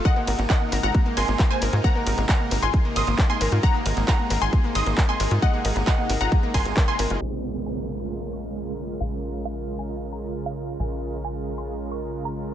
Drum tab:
CC |----------------|----------------|----------------|----------------|
RD |--x---x---x---x-|--x---x---x---x-|--x---x---x---x-|--x---x---x---x-|
HH |x-oxx-oxx-oxx-ox|x-oxx-oxx-oxx-ox|x-oxx-oxx-oxx-ox|x-oxx-oxx-oxx-ox|
CP |----x-------x---|----x-------x---|----x-------x---|----x-------x---|
BD |o---o---o---o---|o---o---o---o---|o---o---o---o---|o---o---o-o-o---|

CC |x---------------|----------------|----------------|
RD |----------------|----------------|----------------|
HH |----------------|----------------|----------------|
CP |----------------|----------------|----------------|
BD |----------------|----------------|----------------|